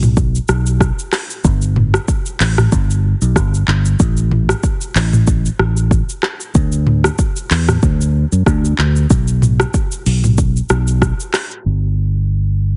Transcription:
0.00 0.38 B1 loud
0.00 mid tom loud
0.00 shaker medium
0.17 kick loud
0.17 shaker medium
0.35 shaker medium
0.48 0.90 B1 loud
0.48 cross-stick medium
0.48 shaker soft
0.67 shaker medium
0.81 kick loud
0.81 cross-stick medium
0.81 shaker medium
0.99 shaker medium
1.13 cross-stick medium
1.13 clap medium
1.13 open hi-hat medium
1.13 shaker medium
1.30 shaker medium
1.45 1.97 G1 loud
1.45 kick loud
1.45 shaker medium
1.62 shaker medium
1.76 mid tom medium
1.94 cross-stick loud
1.94 shaker medium
2.08 kick loud
2.08 shaker medium
2.26 shaker medium
2.40 2.67 A1 medium
2.40 clap loud
2.40 open hi-hat medium
2.40 shaker medium
2.58 cross-stick loud
2.58 mid tom loud
2.58 shaker medium
2.72 3.13 G1 loud
2.72 kick loud
2.72 shaker medium
2.91 shaker medium
3.22 3.33 B1 loud
3.22 shaker medium
3.36 3.62 G1 loud
3.36 kick medium
3.36 cross-stick medium
3.36 shaker medium
3.54 shaker medium
3.68 3.94 G1 loud
3.68 clap medium
3.85 shaker medium
4.00 4.52 A1 loud
4.00 kick loud
4.00 shaker medium
4.17 shaker medium
4.31 mid tom medium
4.49 cross-stick loud
4.49 shaker medium
4.63 kick loud
4.63 shaker medium
4.81 shaker medium
4.95 5.48 A1 loud
4.95 clap loud
4.95 open hi-hat medium
4.95 shaker medium
5.13 mid tom loud
5.13 shaker medium
5.27 kick loud
5.27 shaker medium
5.46 shaker medium
5.59 6.00 A1 loud
5.59 cross-stick medium
5.77 shaker medium
5.91 kick medium
5.91 shaker medium
6.10 shaker medium
6.23 cross-stick medium
6.23 clap medium
6.41 shaker medium
6.55 7.08 D2 loud
6.55 kick loud
6.55 shaker medium
6.72 shaker medium
6.87 mid tom medium
7.04 cross-stick loud
7.04 shaker medium
7.19 kick loud
7.19 shaker medium
7.36 shaker medium
7.51 7.77 E2 loud
7.51 clap loud
7.51 open hi-hat medium
7.51 shaker medium
7.69 cross-stick loud
7.69 mid tom loud
7.69 shaker medium
7.83 8.24 D2 medium
7.83 kick loud
7.83 shaker medium
8.01 shaker medium
8.32 8.44 F#2 medium
8.32 shaker medium
8.46 8.73 D2 loud
8.46 kick loud
8.46 cross-stick medium
8.46 shaker medium
8.65 shaker medium
8.78 9.05 D2 medium
8.78 clap medium
8.96 shaker medium
9.10 9.63 B1 loud
9.10 kick loud
9.10 shaker medium
9.28 shaker medium
9.42 mid tom medium
9.42 shaker medium
9.60 cross-stick loud
9.60 shaker medium
9.74 kick loud
9.74 shaker medium
9.92 shaker medium
10.06 10.59 B1 loud
10.06 open hi-hat medium
10.06 shaker medium
10.24 mid tom loud
10.24 shaker medium
10.38 kick loud
10.38 shaker medium
10.57 shaker medium
10.69 11.11 B1 loud
10.69 cross-stick loud
10.69 shaker soft
10.88 shaker medium
11.02 kick medium
11.02 cross-stick medium
11.02 shaker medium
11.20 shaker medium
11.34 cross-stick medium
11.34 clap medium
11.34 open hi-hat medium
11.34 shaker medium
11.51 shaker medium
11.66 12.77 G1 medium

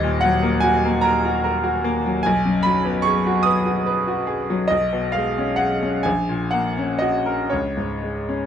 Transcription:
0.00 2.21 D#1 medium
0.00 2.18 D#2 medium
0.00 0.34 A#2 medium
0.00 0.21 D#5 loud
0.21 0.55 F#3 medium
0.21 0.62 F#5 loud
0.43 0.75 A#3 medium
0.60 0.96 F#4 medium
0.60 1.02 G#5 loud
0.85 1.16 A#3 medium
1.01 1.36 A#4 medium
1.01 2.24 A#5 loud
1.25 1.56 F#4 medium
1.44 1.76 A#4 medium
1.64 1.96 F#4 medium
1.84 2.16 A#3 medium
2.06 2.25 F#3 medium
2.23 4.68 B1 medium
2.23 2.64 G#5 loud
2.45 2.77 F#2 medium
2.63 2.97 F#3 medium
2.63 3.04 B5 loud
2.85 3.17 B3 medium
3.02 3.36 G#4 medium
3.02 3.43 C#6 loud
3.27 3.58 F#4 medium
3.43 3.78 B4 medium
3.43 4.70 D#6 loud
3.66 3.98 F#4 medium
3.86 4.19 B4 medium
4.08 4.41 F#4 medium
4.27 4.62 G#4 medium
4.50 4.71 F#3 medium
4.68 6.01 B1 medium
4.68 5.13 D#5 medium
4.93 5.28 B2 medium
5.12 5.50 G#3 medium
5.12 5.58 F5 medium
5.38 5.73 C#4 medium
5.56 5.96 G#4 medium
5.56 6.03 F#5 medium
5.82 6.05 C#4 medium
6.03 7.48 A#1 medium
6.03 6.51 G#5 medium
6.29 6.67 A#2 soft
6.51 6.92 A#3 soft
6.51 7.00 F#5 medium
6.78 7.17 C#4 medium
6.99 7.42 F#4 medium
6.99 7.51 D#5 medium
7.26 7.52 A#4 medium
7.50 8.46 C#2 medium
7.50 8.46 C#5 medium
7.77 8.18 G#2 soft
8.03 8.43 G#3 soft
8.29 8.46 C#4 soft

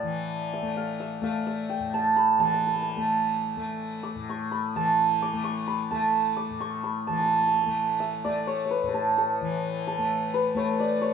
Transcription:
0.00 1.79 A2 medium
0.00 2.38 E3 medium
0.00 0.62 A3 medium
0.00 2.27 D5 medium
0.00 0.53 E5 medium
0.00 0.68 G5 medium
0.00 0.47 A5 medium
0.53 0.83 E5 medium
0.62 1.21 A3 medium
0.77 1.06 F5 medium
1.00 1.29 E5 medium
1.21 2.97 A3 medium
1.21 1.53 F5 medium
1.47 3.76 E5 medium
1.69 3.77 G5 medium
1.80 4.15 A2 medium
1.94 2.39 A5 medium
2.16 3.96 B5 medium
2.38 4.75 E3 medium
2.38 2.47 A5 medium
2.47 2.54 A5 medium
2.54 2.62 A5 medium
2.62 2.67 A5 medium
2.67 2.75 A5 medium
2.75 2.82 A5 medium
2.82 2.89 A5 medium
2.89 2.96 A5 soft
2.96 3.57 A3 medium
2.96 4.76 A5 medium
3.57 5.33 A3 medium
4.03 4.35 D6 medium
4.15 6.50 A2 medium
4.29 5.28 C#6 medium
4.51 5.67 B5 medium
4.75 7.08 E3 medium
4.75 5.90 A5 medium
5.22 5.50 D6 medium
5.33 5.91 A3 medium
5.44 6.43 C#6 medium
5.67 6.83 B5 medium
5.91 7.66 A3 medium
5.91 7.07 A5 medium
6.37 6.66 D6 medium
6.50 8.83 A2 soft
6.60 8.31 C#6 medium
6.84 8.64 B5 medium
7.07 9.40 E3 medium
7.07 7.12 A5 medium
7.13 7.19 A5 soft
7.20 7.25 A5 medium
7.26 7.33 A5 soft
7.33 7.40 A5 soft
7.40 7.47 A5 soft
7.47 7.53 A5 soft
7.54 7.61 A5 soft
7.61 9.55 A5 medium
7.66 8.25 A3 medium
8.00 10.30 E5 medium
8.25 9.98 A3 medium
8.25 8.53 D5 medium
8.47 8.65 C#5 medium
8.65 10.56 C#5 medium
8.71 8.88 B4 medium
8.83 11.12 A2 medium
8.89 10.34 B4 medium
8.94 9.17 A4 medium
9.18 9.87 A4 medium
9.41 11.14 E3 medium
9.87 11.14 A4 medium
9.98 10.54 A3 medium
10.34 11.14 B4 medium
10.54 11.14 A3 medium
10.54 10.86 C#5 medium
10.80 11.07 D5 medium
11.01 11.14 C#5 medium

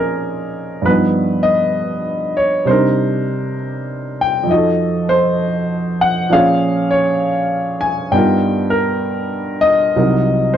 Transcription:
0.00 0.86 A#2 soft
0.00 0.83 F3 soft
0.00 0.86 C4 soft
0.00 0.86 C#4 soft
0.00 0.86 D#4 soft
0.00 0.86 G#4 medium
0.00 0.89 A#4 medium
0.00 0.87 D#5 medium
0.82 2.65 G2 soft
0.82 2.67 F3 soft
0.82 0.92 B4 medium
0.87 2.68 B3 soft
0.87 2.68 D#4 soft
0.93 2.71 B4 soft
1.43 2.38 D#5 medium
2.37 2.65 C#5 medium
2.65 4.48 C3 soft
2.65 4.49 G3 soft
2.65 4.50 D4 soft
2.65 3.54 C5 medium
2.69 4.47 D#4 soft
2.69 4.51 A#4 medium
4.21 4.49 G5 medium
4.43 6.28 F2 soft
4.43 6.29 F3 soft
4.49 6.31 D#4 soft
4.49 6.32 F#4 soft
4.49 5.12 D#5 medium
4.56 6.34 A4 soft
5.09 6.03 C5 medium
6.01 6.29 F#5 medium
6.29 8.12 A#2 medium
6.29 8.13 F3 soft
6.29 8.14 C#4 soft
6.29 8.14 G#4 soft
6.29 6.94 F5 medium
6.35 6.89 C#5 medium
6.91 7.85 C#5 medium
7.81 8.13 G#5 medium
8.12 9.94 G2 soft
8.12 9.95 G3 soft
8.12 9.95 B3 soft
8.12 9.96 D#4 soft
8.12 8.74 G5 medium
8.16 9.96 F4 soft
8.16 8.69 A#4 soft
8.70 9.65 A#4 medium
9.61 10.56 D#5 medium
9.96 10.57 C2 soft
9.96 10.57 C3 soft
9.96 10.57 F#3 soft
9.96 10.57 D#4 soft
9.96 10.57 A#4 soft
10.54 10.57 C5 medium

